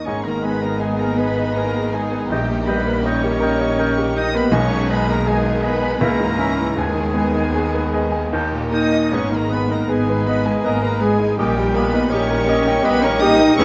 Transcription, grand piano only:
0.07 G#2
0.27 D#3
0.43 G#3
0.63 B3
0.82 D#4
1.00 G#4
1.19 B4
1.38 D#5
1.57 B4
1.75 G#4
1.94 D#4
2.12 B3
2.30 A#1
2.49 A#2
2.67 G3
2.86 A#3
3.06 D#4
3.24 G4
3.40 A#4
3.61 D#5
3.79 A#4
3.98 G4
4.16 D#4
4.35 A#3
4.52 B1
4.71 B2
4.90 G#3
5.09 D#4
5.26 G#4
5.46 D#4
5.63 D#5
5.83 G#5
6.01 C#2
6.19 G#2
6.38 C#4
6.57 E4
6.77 D#2
6.95 D#3
7.13 B3
7.35 D#4
7.55 G#4
7.74 B4
7.94 D#5
8.12 G#5
8.33 D#2
8.52 A#2
8.71 A#3
8.92 D#4
9.13 G#2
9.32 D#3
9.52 B3
9.70 D#4
9.89 G#4
10.10 B4
10.27 D#5
10.46 G#5
10.65 D#5
10.82 B4
11.03 G#4
11.20 D#4
11.40 A#2
11.59 G3
11.75 A#3
11.93 D#4
12.14 G4
12.31 A#4
12.48 D#5
12.67 G5
12.85 D#5
13.04 A#4
13.22 G4
13.40 D#4
13.59 E2

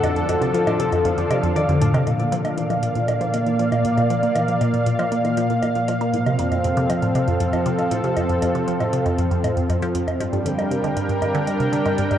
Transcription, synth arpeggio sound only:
0.03 F2
0.16 F2
0.29 F2
0.41 C3
0.54 F3
0.67 A2
0.80 C3
0.92 F2
1.05 F2
1.18 F2
1.31 C3
1.43 F2
1.56 D#3
1.69 F2
1.81 A2
1.94 C3
2.07 A#2
2.20 A#2
2.32 F3
2.45 A#3
2.58 E3
2.70 F3
2.83 A#2
2.96 A#2
3.09 A#2
3.21 F3
3.34 A#3
3.46 E3
3.59 F3
3.72 A#2
3.85 A#2
3.97 A#2
4.10 F3
4.23 A#3
4.36 E3
4.48 F3
4.61 A#2
4.74 A#2
4.86 A#2
4.99 F3
5.12 A#3
5.24 E3
5.37 F3
5.50 A#2
5.63 A#2
5.76 A#2
5.88 F3
6.01 A#3
6.13 A2
6.26 C3
6.39 F2
6.52 F2
6.64 F2
6.77 C3
6.90 F3
7.02 A2
7.15 C3
7.28 F2
7.41 F2
7.53 F2
7.66 C3
7.79 F3
7.91 A2
8.04 C3
8.17 F2
8.30 F2
8.42 F2
8.55 C3
8.68 F3
8.81 A2
8.93 C3
9.06 F2
9.18 F2
9.31 F2
9.44 A2
9.56 F2
9.69 F2
9.82 F3
9.95 F2
10.07 F2
10.20 G2
10.33 G2
10.46 D3
10.58 G3
10.71 C3
10.84 D3
10.97 G2
11.09 G2
11.22 G2
11.35 D3
11.47 G3
11.60 C3
11.73 D3
11.86 G2
11.99 G2
12.11 G2

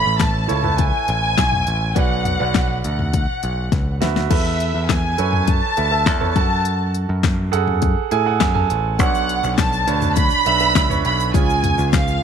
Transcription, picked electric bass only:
0.06 A1
0.50 C#2
1.09 A1
1.38 B1
1.67 A1
1.96 B1
2.41 B1
2.85 D2
3.43 B1
3.72 C#2
4.02 D2
4.31 E2
4.75 E2
5.19 F#2
5.78 D2
6.07 E2
6.36 F#2
7.09 F#2
7.53 F#2
8.12 A2
8.41 F#2
8.70 A1
8.99 B1
9.44 B1
9.88 D2
10.46 B1
10.75 C#2
11.05 B1
11.34 C#2
11.78 C#2

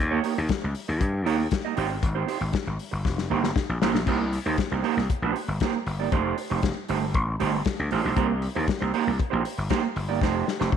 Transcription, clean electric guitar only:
0.11 A#3 D#4 G4 C#5
0.24 A#3 D#4 G4 C#5
0.36 muted clean electric guitar stroke
0.50 muted clean electric guitar stroke
0.62 muted clean electric guitar stroke
0.88 muted clean electric guitar stroke
1.01 muted clean electric guitar stroke
1.12 muted clean electric guitar stroke
1.26 A#3 D#4 G4 C#5
1.38 muted clean electric guitar stroke
1.52 muted clean electric guitar stroke
1.65 A#3 D#4 G4 D#5
1.76 C4 D#4 G4 C5
1.89 muted clean electric guitar stroke
2.03 muted clean electric guitar stroke
2.15 C4 D#4 G4 C5
2.27 C4 D#4 G4 C5
2.40 muted clean electric guitar stroke
2.52 muted clean electric guitar stroke
2.66 muted clean electric guitar stroke
2.91 muted clean electric guitar stroke
3.05 muted clean electric guitar stroke
3.17 muted clean electric guitar stroke
3.30 A#3 D#4 G4 C5
3.43 muted clean electric guitar stroke
3.70 muted clean electric guitar stroke
3.82 A#3 D#4 G4 C5
3.94 muted clean electric guitar stroke
4.08 A#3 D#4 G4 C5
4.21 muted clean electric guitar stroke
4.33 muted clean electric guitar stroke
4.46 A#3 D#4 G4 C5
4.59 muted clean electric guitar stroke
4.71 A#3 D#4 G4 C5
4.83 A#3 D#4 G4 C5
4.97 muted clean electric guitar stroke
5.10 muted clean electric guitar stroke
5.24 A#3 D#4 G4 C5
5.37 muted clean electric guitar stroke
5.50 muted clean electric guitar stroke
5.62 A#3 D#4 G4 C5
5.75 muted clean electric guitar stroke
5.87 muted clean electric guitar stroke
6.00 A#3 D#4 G4 D5
6.12 A3 D#4 G4 C5
6.38 muted clean electric guitar stroke
6.50 A3 D#4 G4 C5
6.75 muted clean electric guitar stroke
6.89 A3 D#4 G4 C5
7.01 muted clean electric guitar stroke
7.15 muted clean electric guitar stroke
7.27 muted clean electric guitar stroke
7.40 A3 D#4 G4 C5
7.53 muted clean electric guitar stroke
7.66 muted clean electric guitar stroke
7.79 muted clean electric guitar stroke
7.91 A3 D#4 G4 C5
8.04 A3 D#4 G4 C5
8.16 A#3 D#4 G4 C5
8.29 muted clean electric guitar stroke
8.42 muted clean electric guitar stroke
8.55 A#3 D#4 G4 C5
8.68 muted clean electric guitar stroke
8.80 A#3 D#4 G4 C5
8.94 A#3 D#4 G4 C5
9.06 muted clean electric guitar stroke
9.19 muted clean electric guitar stroke
9.30 A#3 D#4 G4 C5
9.44 muted clean electric guitar stroke
9.58 muted clean electric guitar stroke
9.70 A#3 D#4 G4 C5
9.84 muted clean electric guitar stroke
9.96 muted clean electric guitar stroke
10.09 A#3 D#4 G4 D5
10.22 A3 D#4 G4 C5
10.47 muted clean electric guitar stroke
10.60 A3 D#4 G4 C5
10.72 muted clean electric guitar stroke

